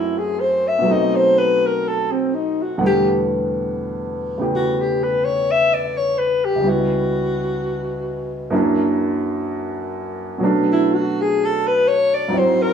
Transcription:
Already playing: grand piano F#2 F#3 A3 C4 E4, alto saxophone E4
0.18 alto saxophone G#4
0.40 alto saxophone C5
0.68 alto saxophone E5
0.79 grand piano B2 F#3
0.85 grand piano A3 C4
0.91 grand piano D#4, alto saxophone D#5
1.16 alto saxophone C5
1.38 alto saxophone B4
1.66 alto saxophone A#4
1.88 alto saxophone A4
2.12 alto saxophone C4
2.35 alto saxophone D#4
2.62 alto saxophone F#4
2.78 grand piano E2 B2 D3 G3 A3 F#5
2.86 alto saxophone G4
4.38 grand piano C#3 A3 B3 E4 G4
4.55 alto saxophone F#4
4.80 alto saxophone G4
5.03 alto saxophone B4
5.25 alto saxophone C#5
5.51 alto saxophone E5
5.74 alto saxophone D5
5.97 alto saxophone C#5
6.18 alto saxophone B4
6.45 alto saxophone G4
6.55 grand piano C#2 C#3
6.61 grand piano G3 B3
6.66 grand piano E4, alto saxophone F#4
8.50 grand piano F#2 F#3 A#3 D4 E4
10.38 grand piano B2 F#3 A3
10.43 grand piano C#4 D4
10.72 alto saxophone E4
10.94 alto saxophone F#4
11.21 alto saxophone G#4
11.45 alto saxophone A4
11.67 alto saxophone B4
11.88 alto saxophone C#5
12.14 alto saxophone D5
12.28 grand piano G#2 F#3 C4 D#4
12.33 grand piano E4
12.38 alto saxophone C5
12.62 alto saxophone A#4

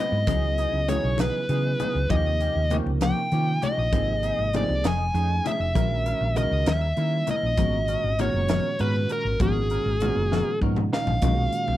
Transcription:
Already playing: tine electric piano F#3 B3 C4 E4 B4, clean electric guitar C4 E4 B4, lead electric guitar D#5
0.12 fingered electric bass G#2
0.27 fingered electric bass C#2, tine electric piano C#3 F#3 B3 E4 G#4, clean electric guitar E3 B3 D#4 G#4, kick, closed hi-hat, high conga
0.58 clean electric guitar B3 D#4 G#4, closed hi-hat
0.72 fingered electric bass C#2, low conga
0.88 tine electric piano C#3 F#3 B3 E4 G#4, clean electric guitar E3 B3 D#4 G#4, lead electric guitar C#5, closed hi-hat, low conga
1.04 fingered electric bass B1
1.18 clean electric guitar E3 B3 D#4 G#4, lead electric guitar B4, snare, closed hi-hat, high conga
1.49 tine electric piano C#3 F#3 B3 E4 G#4, fingered electric bass C#3, clean electric guitar E3 B3 D#4 G#4, closed hi-hat
1.80 clean electric guitar B3 D#4 G#4, closed hi-hat, low conga
1.95 fingered electric bass C#2
2.09 fingered electric bass D#2, tine electric piano C3 F3 A#3 D#4 G4, clean electric guitar F3 A#3 C#4 G4, lead electric guitar D#5, kick, closed hi-hat, high conga
2.26 low conga
2.40 clean electric guitar A#3 C#4 G4, closed hi-hat
2.55 fingered electric bass D#2
2.70 tine electric piano C3 F3 A#3 D#4 A#4, clean electric guitar F3 A#3 C#4 G4, closed hi-hat, low conga
2.86 fingered electric bass C#2, low conga
3.01 clean electric guitar F3 A#3 C#4 G4, lead electric guitar G5, snare, closed hi-hat, high conga
3.17 low conga
3.31 tine electric piano C3 F3 A#3 D#4 F4, fingered electric bass D#3, clean electric guitar F3 A#3 C#4 G4, closed hi-hat, low conga
3.62 clean electric guitar A#3 C#4 G4, lead electric guitar D#5, closed hi-hat, low conga
3.78 fingered electric bass A#1
3.93 fingered electric bass G#1, tine electric piano C3 F3 A#3 D#4 G#4, clean electric guitar F3 C4 D#4 G#4, kick, closed hi-hat, high conga
4.23 clean electric guitar C4 D#4 G#4, closed hi-hat
4.38 fingered electric bass G#1, low conga
4.53 tine electric piano C3 F3 A#3 D#4 G#4, clean electric guitar F3 C4 D#4 G#4, lead electric guitar D5, closed hi-hat, low conga
4.69 fingered electric bass C2
4.84 fingered electric bass F1, clean electric guitar A3 C#4 D#4 G#4, lead electric guitar G#5, snare, closed hi-hat, high conga
5.14 fingered electric bass F2, tine electric piano F3 A3 C#4 D#4 G#4, clean electric guitar A3 C#4 D#4 G#4, closed hi-hat
5.44 clean electric guitar C#4 D#4 G#4, lead electric guitar E5, closed hi-hat, low conga
5.60 fingered electric bass F1
5.74 fingered electric bass A#1, tine electric piano D#3 G#3 C#4 F#4 A#4, clean electric guitar G#3 C#4 E4 A#4, kick, closed hi-hat, high conga
6.06 clean electric guitar C#4 E4 A#4, closed hi-hat
6.21 fingered electric bass A#1, low conga
6.35 tine electric piano D#3 G#3 C#4 F#4 A#4, clean electric guitar G#3 C#4 E4 A#4, lead electric guitar D#5, closed hi-hat, low conga
6.51 fingered electric bass C#2
6.66 fingered electric bass D#2, clean electric guitar G3 C#4 E4 A#4, lead electric guitar E5, snare, closed hi-hat, high conga
6.96 tine electric piano D#3 G3 A#3 C#4 E4, fingered electric bass D#3, clean electric guitar G3 C#4 E4 A#4, closed hi-hat
7.27 clean electric guitar C#4 E4 A#4, lead electric guitar D#5, closed hi-hat, low conga
7.43 fingered electric bass A#1
7.57 fingered electric bass G#1, tine electric piano A#2 D#3 G#3 C#4 F#4, clean electric guitar B3 C#4 F#4 A#4, kick, closed hi-hat, high conga
7.88 clean electric guitar C#4 F#4 A#4, closed hi-hat
8.04 fingered electric bass G#1, low conga
8.18 tine electric piano A#2 D#3 G#3 C#4 F#4, clean electric guitar B3 C#4 F#4 A#4, lead electric guitar C#5, closed hi-hat, low conga
8.34 fingered electric bass F#1
8.48 clean electric guitar B3 C#4 F#4 A#4, snare, closed hi-hat, high conga
8.79 fingered electric bass G#2, tine electric piano A#2 D#3 G#3 C#4 F#4, clean electric guitar B3 C#4 F#4 A#4, lead electric guitar B4, closed hi-hat
9.09 clean electric guitar C#4 F#4 A#4, lead electric guitar A#4, closed hi-hat
9.25 fingered electric bass G#1
9.40 fingered electric bass G#1, tine electric piano A#2 D#3 G#3 C#4 F#4, clean electric guitar B3 C#4 F#4 A#4, lead electric guitar G#4, kick, closed hi-hat, high conga, low conga
9.57 low conga
9.70 clean electric guitar C#4 F#4 A#4, closed hi-hat
9.86 fingered electric bass G#1
10.00 tine electric piano A#2 D#3 G#3 C#4 F#4, clean electric guitar B3 C#4 F#4 A#4, closed hi-hat, low conga
10.16 fingered electric bass F#1, low conga
10.32 clean electric guitar B3 C#4 F#4 A#4, snare, high conga
10.61 fingered electric bass G#2, tine electric piano A#2 D#3 G#3 C#4 D#4 F#5, clean electric guitar B3 C#4 F#4 A#4, kick, high conga
10.76 mid tom, high conga
10.93 clean electric guitar C#4 F#4 A#4, tine electric piano D#5, lead electric guitar F5, snare, low conga
11.07 fingered electric bass A#1, floor tom, low conga
11.22 fingered electric bass B1, tine electric piano A#2 D#3 G#3 C#4 F#4, clean electric guitar G#3 D#4 F#4, kick, closed hi-hat, high conga, low conga
11.53 closed hi-hat, low conga
11.68 fingered electric bass B1, low conga

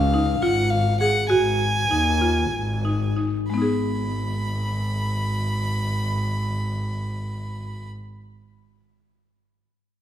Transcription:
Already playing: double bass C#2, violin F5
0.14 marimba D#4
0.42 double bass G#1, marimba F4, violin F#5
0.70 violin F5
1.00 marimba G#4, violin F#5
1.29 double bass G#1, marimba F#4, violin G#5
1.90 double bass D#2, marimba D#4
2.21 marimba F4
2.53 double bass G#1
2.85 marimba D#4
3.16 marimba D#4
3.49 double bass G#1, marimba G#3, violin B5
3.54 marimba B3 D#4
3.62 marimba G#4

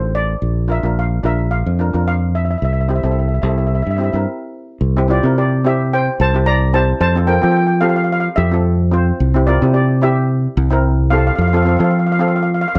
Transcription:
Already playing: fingered electric bass A1, steel pan D4 F4 A4 C5
0.15 steel pan D5
0.42 fingered electric bass A#1
0.68 steel pan D4 F4 A#4 E5
0.83 fingered electric bass A#1, steel pan D4 F4 A#4
0.99 steel pan F5
1.23 fingered electric bass A#1, steel pan D4 F4 A#4 E5
1.51 steel pan F5
1.66 fingered electric bass F2
1.79 steel pan D4 F4 A#4
1.93 fingered electric bass F2, steel pan D4 F4 A#4
2.08 steel pan F5
2.35 steel pan E5
2.45 steel pan E5
2.51 steel pan E5
2.58 steel pan E5
2.62 fingered electric bass C2, steel pan E5
2.73 steel pan E5
2.81 steel pan E5
2.88 steel pan C4 E4 G4 E5
2.95 steel pan E5
3.03 fingered electric bass C2, steel pan C4 E4 A4 E5
3.11 steel pan E5
3.19 steel pan E5
3.28 steel pan E5
3.34 steel pan E5
3.42 fingered electric bass C2, steel pan C4 E4 A4 E5
3.49 steel pan E5
3.58 steel pan E5
3.67 steel pan E5
3.75 steel pan E5
3.82 steel pan E5
3.86 fingered electric bass G2
3.91 steel pan E5
3.97 steel pan C4 E4 G4 E5
4.04 steel pan E5
4.12 fingered electric bass G2, steel pan C4 E4 A#4 E5
4.81 fingered electric bass C2
4.97 steel pan C4 E4 G4
5.08 steel pan C4 E4 F4 G4 D5
5.23 fingered electric bass C3, steel pan C4 E4 A#4
5.38 steel pan G4 D5
5.64 steel pan C4 E4 G4 E5
5.93 steel pan C5 G5
6.20 fingered electric bass C2, steel pan C5 A5
6.34 steel pan C4 E4 G4
6.46 steel pan D5 A#5
6.73 steel pan C4 E4 G4 C5 A5
7.00 fingered electric bass F2, steel pan C5 A5
7.15 steel pan C4 F4 A4
7.27 steel pan C4 F4 A4 A#4 G5
7.33 steel pan G5
7.42 fingered electric bass F3, steel pan C4 F4 A4 G5
7.52 steel pan G5
7.57 steel pan G5
7.67 steel pan G5
7.81 steel pan C4 F4 G4 A4 F5
7.89 steel pan F5
7.96 steel pan F5
8.04 steel pan F5
8.12 steel pan F5
8.20 steel pan F5
8.36 fingered electric bass F2, steel pan G4 E5
8.51 steel pan C4 F4 A4
8.91 steel pan C4 F4 C5
9.20 fingered electric bass C2
9.34 steel pan C4 E4 G4
9.47 steel pan C4 E4 F4 A#4 D5
9.62 fingered electric bass C3, steel pan C4 E4 G4
9.74 steel pan G4 D5
10.01 steel pan C4 E4 G4 E5
10.57 fingered electric bass C2
10.70 steel pan C4 E4 A#4
11.10 steel pan C4 E4 G4 A4 F5
11.18 steel pan F5
11.27 steel pan F5
11.35 fingered electric bass F2, steel pan F5
11.42 steel pan F5
11.48 steel pan F5
11.53 steel pan C4 F4 A4 F5
11.63 steel pan C4 F4 F5
11.67 steel pan A4 F5
11.77 fingered electric bass F3, steel pan C4 F4 A4 F5
11.84 steel pan F5
11.91 steel pan F5
11.99 steel pan F5
12.07 steel pan F5
12.12 steel pan F5
12.19 steel pan C4 F4 A4 F5
12.28 steel pan F5
12.36 steel pan F5
12.43 steel pan F5
12.54 steel pan F5
12.61 steel pan F5
12.68 steel pan F5
12.75 fingered electric bass F2, steel pan F5

